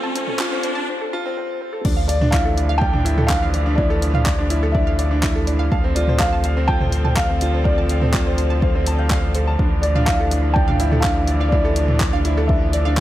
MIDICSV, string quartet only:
0, 0, Header, 1, 2, 480
1, 0, Start_track
1, 0, Key_signature, -1, "minor"
1, 0, Tempo, 483871
1, 1835, Time_signature, 4, 2, 24, 8
1, 12897, End_track
2, 0, Start_track
2, 0, Title_t, "String quartet"
2, 0, Program_c, 0, 48
2, 0, Note_on_c, 0, 38, 67
2, 0, Note_on_c, 0, 50, 59
2, 0, Note_on_c, 0, 53, 77
2, 0, Note_on_c, 0, 69, 86
2, 841, Note_off_c, 0, 38, 0
2, 841, Note_off_c, 0, 53, 0
2, 842, Note_off_c, 0, 50, 0
2, 849, Note_off_c, 0, 69, 0
2, 1841, Note_on_c, 0, 53, 86
2, 1845, Note_on_c, 0, 50, 82
2, 1845, Note_on_c, 0, 52, 72
2, 1846, Note_on_c, 0, 57, 71
2, 5640, Note_off_c, 0, 53, 0
2, 5641, Note_off_c, 0, 52, 0
2, 5642, Note_off_c, 0, 57, 0
2, 5672, Note_on_c, 0, 69, 88
2, 5678, Note_on_c, 0, 53, 80
2, 5678, Note_on_c, 0, 60, 76
2, 9475, Note_off_c, 0, 69, 0
2, 9478, Note_off_c, 0, 60, 0
2, 9522, Note_on_c, 0, 52, 77
2, 9523, Note_on_c, 0, 62, 74
2, 12897, Note_off_c, 0, 50, 0
2, 12897, Note_off_c, 0, 52, 0
2, 12897, Note_off_c, 0, 53, 0
2, 12897, Note_off_c, 0, 62, 0
2, 12897, End_track
0, 0, End_of_file